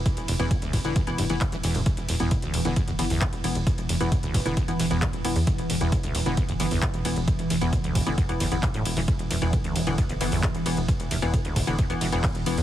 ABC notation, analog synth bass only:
X:1
M:4/4
L:1/16
Q:1/4=133
K:Ephr
V:1 name="Analog synth bass" clef=bass
z E,,, F,,, E,,, z E,,, E,,, E,,, z F,,, F,,, F,,, z E,,, E,,, E,,, | z E,,, E,,, E,,, z E,,, E,,, E,,, z G,,, G,,, G,,, z E,,, E,,, E,,, | z E,,, F,,, E,,, z E,,, E,,, E,,, z E,,, E,,, E,,, z E,,, E,,, E,, | z E,,, E,,, E,,, z E,,, E,,, E,,, z G,,, G,,, G,,, z E,,, E,,, E,,, |
z E,,, F,,, E,,, z E,,, E,,, E,,, z E,,, G,,, G,,, z E,,, E,,, E,,, | z E,,, E,,, E,,, z E,,, E,,, E,,, z G,,, G,,, G,,, z E,,, E,,, E,,, | z E,,, F,,, E,,, z E,,, E,,, E,,, z E,,, E,,, E,,, z E,,, E,,, E,, |]